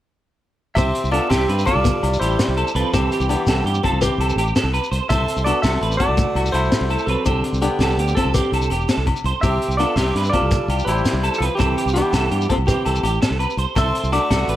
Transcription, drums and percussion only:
0.75 kick, closed hi-hat, low agogo, shekere
0.95 closed hi-hat, shekere
1.05 shekere
1.11 closed hi-hat, low agogo
1.30 snare, closed hi-hat, low agogo, shekere
1.49 closed hi-hat
1.59 shekere
1.65 kick, closed hi-hat, low agogo
1.85 kick, closed hi-hat, shekere
2.03 closed hi-hat, low agogo
2.14 shekere
2.21 closed hi-hat, low agogo, shekere
2.30 shekere
2.39 snare, closed hi-hat, shekere
2.57 closed hi-hat, low agogo, shekere
2.67 shekere
2.76 closed hi-hat
2.94 kick, closed hi-hat, low agogo, shekere
3.12 closed hi-hat, shekere
3.20 shekere
3.29 closed hi-hat, low agogo
3.47 snare, closed hi-hat, low agogo, shekere
3.67 closed hi-hat
3.74 shekere
3.84 kick, closed hi-hat, low agogo
4.02 kick, closed hi-hat, shekere
4.21 closed hi-hat, low agogo
4.29 shekere
4.38 closed hi-hat, low agogo, shekere
4.47 shekere
4.56 snare, closed hi-hat, shekere
4.74 closed hi-hat, low agogo, shekere
4.84 shekere
4.93 closed hi-hat
5.10 kick, closed hi-hat, low agogo, shekere
5.28 closed hi-hat, shekere
5.37 shekere
5.46 closed hi-hat, low agogo
5.63 snare, closed hi-hat, low agogo, shekere
5.83 closed hi-hat
5.92 shekere
6.00 kick, closed hi-hat, low agogo
6.17 kick, closed hi-hat, shekere
6.36 closed hi-hat, low agogo
6.46 shekere
6.54 closed hi-hat, low agogo
6.65 shekere
6.72 snare, closed hi-hat, shekere
6.90 closed hi-hat, low agogo, shekere
6.98 shekere
7.08 closed hi-hat
7.26 kick, closed hi-hat, low agogo, shekere
7.44 closed hi-hat, shekere
7.54 shekere
7.62 closed hi-hat, low agogo
7.81 snare, closed hi-hat, low agogo, shekere
7.90 shekere
7.99 closed hi-hat
8.08 shekere
8.17 kick, closed hi-hat, low agogo
8.35 kick, closed hi-hat, shekere
8.44 shekere
8.53 closed hi-hat, low agogo
8.62 shekere
8.70 closed hi-hat, low agogo
8.81 shekere
8.89 snare, closed hi-hat, shekere
9.07 kick, closed hi-hat, low agogo
9.16 shekere
9.26 closed hi-hat
9.43 kick, closed hi-hat, low agogo, shekere
9.62 closed hi-hat, shekere
9.71 shekere
9.79 closed hi-hat, low agogo
9.97 snare, closed hi-hat, low agogo, shekere
10.16 snare, closed hi-hat
10.25 shekere
10.33 kick, closed hi-hat, low agogo
10.51 kick, closed hi-hat, shekere
10.70 closed hi-hat, low agogo
10.79 shekere
10.87 closed hi-hat, low agogo, shekere
10.97 shekere
11.05 snare, closed hi-hat, shekere
11.23 closed hi-hat, low agogo, shekere
11.34 shekere
11.42 closed hi-hat
11.60 kick, closed hi-hat, low agogo, shekere
11.78 closed hi-hat, shekere
11.88 shekere
11.96 closed hi-hat, low agogo
12.13 snare, closed hi-hat, low agogo, shekere
12.32 closed hi-hat
12.41 shekere
12.50 kick, closed hi-hat, low agogo
12.68 kick, closed hi-hat, shekere
12.85 closed hi-hat, low agogo
12.95 shekere
13.03 closed hi-hat, low agogo, shekere
13.14 shekere
13.22 snare, closed hi-hat, shekere
13.40 closed hi-hat, low agogo, shekere
13.50 shekere
13.58 closed hi-hat
13.75 kick, closed hi-hat, low agogo, shekere
13.95 closed hi-hat, shekere
14.04 shekere
14.13 closed hi-hat, low agogo
14.30 snare, closed hi-hat, low agogo, shekere
14.49 closed hi-hat

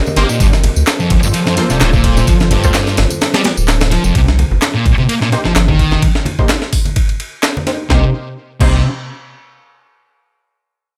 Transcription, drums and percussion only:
0.06 tambourine, high conga
0.16 snare, ride
0.29 tambourine
0.40 kick, ride, tambourine
0.53 snare, tambourine
0.64 ride, high conga, low conga
0.76 tambourine
0.87 snare, clap, ride, tambourine
1.00 tambourine
1.10 kick, ride
1.23 tambourine, high conga
1.33 ride, tambourine
1.46 snare, tambourine
1.57 snare, ride
1.70 snare, tambourine
1.81 snare, clap, ride, tambourine
1.93 kick, tambourine, high conga
2.04 kick, ride
2.17 snare, tambourine
2.27 kick, ride, tambourine
2.40 snare, tambourine
2.51 ride, high conga, low conga
2.64 kick, tambourine
2.74 snare, clap, ride, tambourine
2.87 snare, tambourine
2.97 snare, ride
3.10 ride, tambourine, high conga
3.21 snare, ride, tambourine
3.34 snare, ride, tambourine, high bongo
3.44 snare, ride, high bongo
3.57 tambourine
3.68 snare, clap, ride, tambourine
3.81 snare, ride, tambourine, high conga
3.92 snare, ride
4.04 tambourine
4.15 kick, ride
4.28 snare
4.39 ride, high conga
4.51 low conga
4.62 snare, clap, ride
4.86 kick, ride
4.98 high conga
5.09 ride
5.22 snare
5.32 snare, ride
5.45 snare
5.56 snare, clap, ride
5.69 kick, high conga
5.79 kick, ride
5.91 snare, low conga
6.02 kick, ride
6.15 snare
6.25 ride, high conga
6.39 kick, low conga
6.49 snare, clap, ride
6.62 snare
6.73 kick, open hi-hat
6.85 ride, high conga
6.96 kick, ride
7.09 ride
7.20 ride
7.43 snare, clap, ride
7.57 high conga
7.67 snare, ride
7.90 kick, snare
8.61 kick, crash

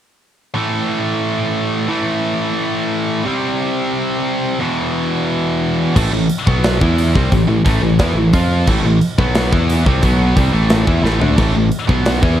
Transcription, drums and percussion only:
5.96 kick, crash
6.30 open hi-hat
6.47 kick
6.64 snare, open hi-hat
6.81 kick
6.98 open hi-hat
7.15 kick
7.32 kick, open hi-hat
7.66 kick, open hi-hat
7.99 kick, snare, open hi-hat
8.33 kick, open hi-hat
8.67 kick, crash
9.01 open hi-hat
9.19 kick
9.35 snare, open hi-hat
9.53 kick
9.70 open hi-hat
9.86 kick
10.03 kick, open hi-hat
10.37 kick, open hi-hat
10.70 snare, open hi-hat
10.87 kick
11.05 snare
11.21 floor tom
11.38 kick, crash
11.72 open hi-hat
11.89 kick
12.06 snare, open hi-hat
12.23 kick

